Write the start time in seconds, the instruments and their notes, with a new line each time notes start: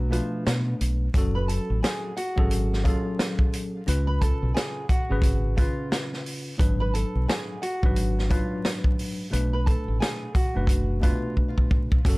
Already playing: fingered electric bass B1
0.10 tine electric piano B2 A3 D4 B4, nylon-string guitar F3 F4, closed hi-hat
0.47 fingered electric bass B2, snare, closed hi-hat
0.81 fingered electric bass B1, closed hi-hat
1.14 fingered electric bass F#1, tine electric piano F#3 C#4 F#4 A4, kick, closed hi-hat
1.35 nylon-string guitar B4 B5
1.48 nylon-string guitar A4 A5, closed hi-hat
1.70 fingered electric bass A1
1.83 nylon-string guitar G#4 G#5, snare, closed hi-hat
2.17 nylon-string guitar F#4 F#5, closed hi-hat
2.36 fingered electric bass G#1, tine electric piano F#3 C#4 G#4 A4, kick
2.51 closed hi-hat
2.73 snare
2.84 tine electric piano F#3 C#4 G#4 A4, nylon-string guitar F4 F5, kick, closed hi-hat
3.19 snare, closed hi-hat
3.39 kick
3.53 closed hi-hat
3.86 fingered electric bass C#2, tine electric piano C#3 C#4 F4 B4, closed hi-hat
4.07 nylon-string guitar B4 B5
4.21 nylon-string guitar A4 A5, kick, closed hi-hat
4.43 fingered electric bass B1
4.54 nylon-string guitar G#4 G#5, snare, closed hi-hat
4.89 nylon-string guitar F#4 F#5, kick, closed hi-hat
5.09 fingered electric bass G#1, tine electric piano C#3 C#4 G#4 B4
5.22 kick, closed hi-hat
5.56 tine electric piano C#3 C#4 F4 B4, nylon-string guitar F4 F5, kick, closed hi-hat
5.92 snare, closed hi-hat
6.14 snare
6.26 open hi-hat
6.57 fingered electric bass G#1, tine electric piano G#2 F#3 D4 B4, kick, closed hi-hat
6.80 nylon-string guitar B4 B5
6.94 nylon-string guitar A4 A5, closed hi-hat
7.15 fingered electric bass B1
7.28 nylon-string guitar G#4 G#5, snare, closed hi-hat
7.62 nylon-string guitar F#4 F#5, closed hi-hat
7.83 fingered electric bass G#1, tine electric piano G#2 F#3 D4 B4, kick
7.96 closed hi-hat
8.19 snare
8.29 tine electric piano G#2 F#3 D4 B4, nylon-string guitar F4 F5, kick, closed hi-hat
8.65 snare, closed hi-hat
8.84 kick
8.99 open hi-hat
9.30 fingered electric bass B1, tine electric piano B2 A3 D4 B4, closed hi-hat
9.53 nylon-string guitar B4 B5
9.66 nylon-string guitar A4 A5, kick, closed hi-hat
9.88 fingered electric bass A1
10.00 nylon-string guitar G#4 G#5, snare, closed hi-hat
10.35 nylon-string guitar F#4 F#5, kick, closed hi-hat
10.54 fingered electric bass F#1, tine electric piano B2 A3 D4 B4
10.67 kick, closed hi-hat
11.01 tine electric piano B2 A3 D4 B4, nylon-string guitar F4 F5, kick, closed hi-hat
11.37 kick
11.58 kick
11.71 kick
11.92 kick
12.05 fingered electric bass F#1, tine electric piano F#3 C#4 F#4 A4, kick, closed hi-hat